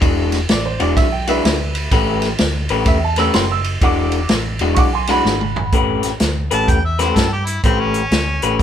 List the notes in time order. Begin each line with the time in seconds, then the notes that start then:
0.01 E1 E3 G#3 D4 F#4, kick, ride
0.32 snare, ride
0.49 A1 D5, snare, ride
0.66 C5
0.80 E1 E3 G#3 D4 F#4 D5, ride
0.97 B1 E5, kick, snare, ride
1.12 G5
1.27 E3 G#3 D4 F#4 B4 E5, ride
1.45 D2, snare, ride
1.75 ride
1.91 A1 A3 C#4 G4 B4, kick, snare, ride
2.22 snare, ride
2.38 D2, snare, ride
2.69 A1 A3 C#4 G4 B4, ride
2.86 E2 E5, kick, snare, ride
3.04 A5
3.16 A3 C#4 G4 B4 E6, snare, ride
3.34 F#1 C6, snare, ride
3.52 E6
3.64 ride
3.81 E1 E3 G#3 D4 F#4 F#5 D6, kick, ride
4.12 ride
4.29 A1, snare, ride
4.59 E1 E3 G#3 D4 F#4, ride
4.75 B1 F#5 C#6, kick, ride
4.79 D6
4.93 G#5 C6
5.07 E3 G#3 D4 F#4 F#5 B5, snare, ride
5.25 G#1, snare
5.41 mid tom
5.56 floor tom
5.72 A1 A3 C#4 G4 B4, kick, closed hi-hat
6.03 snare, closed hi-hat
6.20 D2, snare, closed hi-hat
6.51 A1 A3 C#4 G4 B4 A5, closed hi-hat
6.68 E2 G5, kick, closed hi-hat
6.85 E5
6.99 A3 C#4 G4 B4 C5, snare, closed hi-hat
7.16 G2 A4, kick, snare, closed hi-hat
7.33 G4
7.46 E4, closed hi-hat
7.64 A1 A3 C4 C#4 G4 B4, kick, closed hi-hat
7.80 C#4
7.94 closed hi-hat
8.11 D2, snare, closed hi-hat
8.42 A1 A3 C#4 G4 B4, closed hi-hat
8.60 kick